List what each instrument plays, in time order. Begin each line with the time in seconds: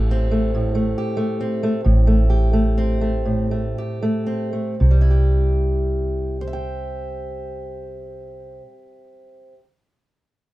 Already playing: fretless electric bass A1, steel-string acoustic guitar A2 A3 G4
0.11 steel-string acoustic guitar C4
0.31 steel-string acoustic guitar A3
0.55 steel-string acoustic guitar A2
0.75 steel-string acoustic guitar A3
0.98 steel-string acoustic guitar G4
1.17 steel-string acoustic guitar A3
1.41 steel-string acoustic guitar C4
1.63 steel-string acoustic guitar A3
1.84 fretless electric bass A1, steel-string acoustic guitar A2
2.07 steel-string acoustic guitar A3
2.30 steel-string acoustic guitar G4
2.53 steel-string acoustic guitar A3
2.78 steel-string acoustic guitar C4
3.01 steel-string acoustic guitar A3
3.25 steel-string acoustic guitar A2
3.51 steel-string acoustic guitar A3
3.78 steel-string acoustic guitar G4
4.03 steel-string acoustic guitar A3
4.27 steel-string acoustic guitar C4
4.53 steel-string acoustic guitar A3
4.80 fretless electric bass C2, steel-string acoustic guitar C3
4.91 steel-string acoustic guitar G3
5.01 steel-string acoustic guitar E4
5.10 steel-string acoustic guitar G4
6.41 steel-string acoustic guitar C5
6.47 steel-string acoustic guitar E5
6.53 steel-string acoustic guitar G5